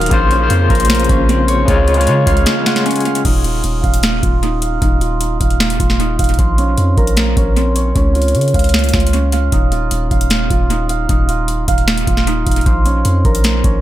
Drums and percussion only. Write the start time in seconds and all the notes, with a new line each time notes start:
0.01 closed hi-hat
0.06 closed hi-hat
0.11 kick, closed hi-hat
0.31 closed hi-hat
0.50 closed hi-hat
0.70 kick, closed hi-hat
0.75 closed hi-hat
0.80 closed hi-hat
0.85 closed hi-hat
0.90 finger snap, snare, closed hi-hat
0.95 closed hi-hat
1.00 closed hi-hat
1.04 closed hi-hat
1.09 kick, closed hi-hat
1.29 closed hi-hat
1.48 closed hi-hat
1.68 kick, closed hi-hat
1.88 closed hi-hat, open hi-hat
1.94 closed hi-hat
2.01 closed hi-hat
2.07 closed hi-hat
2.27 kick, closed hi-hat
2.37 closed hi-hat
2.46 finger snap, snare, closed hi-hat
2.66 finger snap, snare, closed hi-hat
2.76 snare, closed hi-hat
2.86 closed hi-hat
2.91 closed hi-hat
2.96 closed hi-hat
3.00 closed hi-hat
3.05 closed hi-hat
3.15 closed hi-hat
3.25 kick, closed hi-hat, crash
3.44 closed hi-hat
3.64 closed hi-hat
3.84 kick, closed hi-hat
3.94 closed hi-hat
4.03 finger snap, snare, closed hi-hat
4.23 kick, closed hi-hat
4.43 closed hi-hat
4.62 closed hi-hat
4.82 kick, closed hi-hat
5.01 closed hi-hat
5.21 closed hi-hat
5.41 kick, closed hi-hat
5.50 closed hi-hat
5.60 finger snap, snare, closed hi-hat
5.70 closed hi-hat
5.80 kick, closed hi-hat
5.90 snare
6.00 closed hi-hat
6.19 kick, closed hi-hat
6.24 closed hi-hat
6.29 closed hi-hat
6.34 closed hi-hat
6.39 kick, closed hi-hat
6.58 closed hi-hat
6.78 closed hi-hat
6.97 kick, closed hi-hat
7.07 closed hi-hat
7.17 finger snap, snare, closed hi-hat
7.37 kick, closed hi-hat
7.57 closed hi-hat
7.76 closed hi-hat
7.96 kick, closed hi-hat
8.15 closed hi-hat
8.22 closed hi-hat
8.28 closed hi-hat
8.35 closed hi-hat
8.41 closed hi-hat
8.48 closed hi-hat
8.54 kick, closed hi-hat
8.59 closed hi-hat
8.64 closed hi-hat
8.69 closed hi-hat
8.74 finger snap, snare, closed hi-hat
8.79 closed hi-hat
8.84 closed hi-hat
8.89 closed hi-hat
8.93 finger snap, kick, snare
9.00 closed hi-hat
9.07 closed hi-hat
9.13 closed hi-hat
9.32 closed hi-hat
9.52 kick, closed hi-hat
9.72 closed hi-hat
9.91 closed hi-hat
10.11 kick, closed hi-hat
10.21 closed hi-hat
10.30 finger snap, snare, closed hi-hat
10.50 kick, closed hi-hat
10.70 closed hi-hat
10.89 closed hi-hat
11.09 kick, closed hi-hat
11.29 closed hi-hat
11.48 closed hi-hat
11.68 kick, closed hi-hat
11.78 closed hi-hat
11.88 finger snap, snare, closed hi-hat
11.98 closed hi-hat
12.07 kick, closed hi-hat
12.17 snare
12.27 closed hi-hat
12.47 kick, closed hi-hat
12.51 closed hi-hat
12.56 closed hi-hat
12.61 closed hi-hat
12.66 kick, closed hi-hat
12.86 closed hi-hat
13.05 closed hi-hat
13.25 kick, closed hi-hat
13.35 closed hi-hat
13.44 finger snap, snare, closed hi-hat
13.64 kick, closed hi-hat